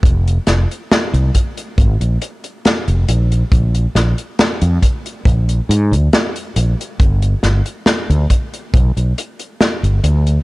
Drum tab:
HH |xxxxxxxxxxxxxxxx|xxxxxxxxxxxxxxxx|xxxxxxxxxxxxxxxx|
SD |--o-o-------o---|--o-o-------o---|--o-o-------o---|
BD |o-----o-o-------|o-----o-o-------|o-----o-o-------|